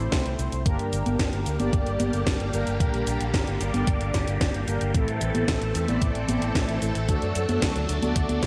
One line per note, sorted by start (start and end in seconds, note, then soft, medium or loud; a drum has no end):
0.00 0.63 A3 medium
0.00 0.63 C4 medium
0.00 0.63 E4 medium
0.00 0.63 C5 medium
0.12 0.22 C2 loud
0.12 kick loud
0.12 snare loud
0.12 closed hi-hat medium
0.12 cabasa soft
0.26 0.36 C2 medium
0.26 closed hi-hat soft
0.26 cabasa soft
0.39 0.49 C2 loud
0.39 closed hi-hat soft
0.39 cabasa medium
0.52 0.63 C2 medium
0.52 closed hi-hat soft
0.52 cabasa soft
0.66 0.76 G1 loud
0.66 4.91 D3 medium
0.66 4.90 G3 medium
0.66 1.56 A#3 medium
0.66 4.91 A#3 medium
0.66 1.56 D4 medium
0.66 1.56 G4 medium
0.66 4.91 G4 medium
0.66 1.56 A#4 medium
0.66 kick loud
0.66 closed hi-hat medium
0.66 cabasa soft
0.79 0.89 G2 medium
0.79 closed hi-hat soft
0.79 cabasa soft
0.93 1.03 G1 medium
0.93 closed hi-hat medium
0.93 cabasa medium
1.06 1.16 G1 medium
1.06 closed hi-hat soft
1.06 high conga medium
1.06 cabasa soft
1.19 1.30 G1 loud
1.19 kick loud
1.19 snare loud
1.19 closed hi-hat medium
1.19 cabasa soft
1.33 1.43 G1 medium
1.33 closed hi-hat soft
1.33 cabasa soft
1.46 1.56 D2 medium
1.46 closed hi-hat medium
1.46 cabasa medium
1.60 1.70 G1 medium
1.60 2.50 A#3 medium
1.60 2.50 D4 medium
1.60 2.50 G4 medium
1.60 2.50 D5 loud
1.60 closed hi-hat soft
1.60 high conga medium
1.60 cabasa soft
1.73 1.83 G1 loud
1.73 kick loud
1.73 closed hi-hat medium
1.73 cabasa soft
1.86 1.97 G1 medium
1.86 closed hi-hat soft
1.86 cabasa soft
2.00 2.10 G1 medium
2.00 closed hi-hat medium
2.00 high conga medium
2.00 cabasa medium
2.13 2.23 G1 medium
2.13 closed hi-hat soft
2.13 cabasa soft
2.27 2.37 G1 loud
2.27 kick loud
2.27 snare loud
2.27 closed hi-hat medium
2.27 cabasa soft
2.40 2.50 G1 medium
2.40 closed hi-hat soft
2.40 cabasa soft
2.53 2.64 G1 medium
2.53 2.77 A#3 medium
2.53 2.77 D4 medium
2.53 2.77 G4 medium
2.53 2.77 A#4 medium
2.53 closed hi-hat soft
2.53 cabasa medium
2.67 2.77 G1 medium
2.67 closed hi-hat soft
2.67 cabasa soft
2.80 2.90 A#1 loud
2.80 3.71 A#3 medium
2.80 3.71 D4 medium
2.80 3.71 G4 medium
2.80 3.71 A#4 medium
2.80 kick loud
2.80 closed hi-hat medium
2.80 cabasa soft
2.94 3.04 A#1 medium
2.94 closed hi-hat soft
2.94 cabasa soft
3.07 3.17 A#1 loud
3.07 closed hi-hat medium
3.07 cabasa medium
3.20 3.30 A#1 medium
3.20 closed hi-hat soft
3.20 cabasa soft
3.34 3.44 G1 loud
3.34 kick loud
3.34 snare loud
3.34 closed hi-hat medium
3.34 cabasa soft
3.47 3.57 G1 medium
3.47 closed hi-hat soft
3.47 cabasa soft
3.60 3.71 G1 medium
3.60 closed hi-hat medium
3.60 cabasa medium
3.74 3.84 G1 medium
3.74 4.64 A#3 medium
3.74 4.64 D4 medium
3.74 4.64 G4 medium
3.74 4.65 D5 loud
3.74 closed hi-hat soft
3.74 high conga medium
3.74 cabasa soft
3.87 3.97 G1 loud
3.87 kick loud
3.87 closed hi-hat medium
3.87 cabasa soft
4.01 4.11 G1 medium
4.01 closed hi-hat soft
4.01 cabasa soft
4.14 4.24 G1 medium
4.14 kick medium
4.14 snare medium
4.14 closed hi-hat medium
4.14 cabasa medium
4.27 4.38 G1 medium
4.27 closed hi-hat soft
4.27 cabasa soft
4.41 4.51 G1 loud
4.41 kick loud
4.41 snare loud
4.41 closed hi-hat medium
4.41 cabasa soft
4.54 4.64 G1 medium
4.54 closed hi-hat soft
4.54 cabasa soft
4.68 4.78 G1 loud
4.68 4.91 A#3 medium
4.68 4.91 D4 medium
4.68 4.91 G4 medium
4.68 4.91 A#4 medium
4.68 closed hi-hat soft
4.68 cabasa medium
4.81 4.91 G1 medium
4.81 closed hi-hat soft
4.81 cabasa soft
4.94 5.05 A1 loud
4.94 7.07 E3 medium
4.94 5.85 A3 medium
4.94 8.46 A3 medium
4.94 5.85 C4 medium
4.94 7.07 C4 medium
4.94 5.85 E4 medium
4.94 5.85 A4 loud
4.94 8.46 A4 medium
4.94 kick loud
4.94 closed hi-hat loud
4.94 cabasa soft
5.08 5.18 A2 medium
5.08 closed hi-hat soft
5.08 cabasa soft
5.21 5.31 A1 loud
5.21 closed hi-hat medium
5.21 cabasa medium
5.35 5.45 A1 medium
5.35 closed hi-hat soft
5.35 high conga medium
5.35 cabasa soft
5.48 5.58 A1 loud
5.48 kick loud
5.48 snare loud
5.48 closed hi-hat loud
5.48 cabasa soft
5.61 5.71 A1 medium
5.61 closed hi-hat soft
5.61 cabasa soft
5.75 5.85 E2 medium
5.75 closed hi-hat medium
5.75 cabasa medium
5.88 5.98 A1 medium
5.88 6.79 A3 medium
5.88 6.79 C4 medium
5.88 6.79 E4 medium
5.88 6.79 D5 loud
5.88 closed hi-hat soft
5.88 high conga medium
5.88 cabasa soft
6.02 6.12 A1 loud
6.02 kick loud
6.02 closed hi-hat medium
6.02 cabasa soft
6.15 6.25 A1 medium
6.15 closed hi-hat soft
6.15 cabasa soft
6.28 6.38 A1 medium
6.28 closed hi-hat medium
6.28 high conga medium
6.28 cabasa medium
6.42 6.52 A1 medium
6.42 closed hi-hat soft
6.42 cabasa soft
6.55 6.65 A1 loud
6.55 kick loud
6.55 snare loud
6.55 closed hi-hat medium
6.55 cabasa soft
6.69 6.79 A1 medium
6.69 closed hi-hat soft
6.69 cabasa soft
6.82 6.92 A1 medium
6.82 7.06 A3 medium
6.82 7.06 C4 medium
6.82 7.06 E4 medium
6.82 7.06 A4 medium
6.82 closed hi-hat soft
6.82 cabasa medium
6.95 7.06 A1 medium
6.95 closed hi-hat soft
6.95 cabasa soft
7.09 7.19 D2 loud
7.09 8.46 F#3 medium
7.09 7.99 A3 medium
7.09 8.46 D4 medium
7.09 7.99 D4 medium
7.09 7.99 F#4 medium
7.09 7.99 A4 medium
7.09 kick loud
7.09 closed hi-hat medium
7.09 cabasa soft
7.22 7.32 F#2 medium
7.22 closed hi-hat soft
7.22 cabasa soft
7.35 7.46 F#2 medium
7.35 closed hi-hat medium
7.35 cabasa medium
7.49 7.59 F#2 medium
7.49 closed hi-hat soft
7.49 high conga medium
7.49 cabasa soft
7.62 7.72 D2 loud
7.62 kick loud
7.62 snare loud
7.62 closed hi-hat loud
7.62 cabasa soft
7.76 7.86 D2 medium
7.76 closed hi-hat soft
7.76 cabasa soft
7.89 7.99 D2 medium
7.89 closed hi-hat medium
7.89 cabasa medium
8.03 8.13 D2 medium
8.03 8.46 A3 medium
8.03 8.46 D4 medium
8.03 8.46 F#4 medium
8.03 8.46 D5 loud
8.03 closed hi-hat soft
8.03 high conga medium
8.03 cabasa soft
8.16 8.26 D2 loud
8.16 kick loud
8.16 closed hi-hat loud
8.16 cabasa soft
8.29 8.39 D2 medium
8.29 closed hi-hat soft
8.29 high conga medium
8.29 cabasa soft
8.43 8.46 D2 medium
8.43 kick medium
8.43 snare medium
8.43 closed hi-hat medium
8.43 cabasa medium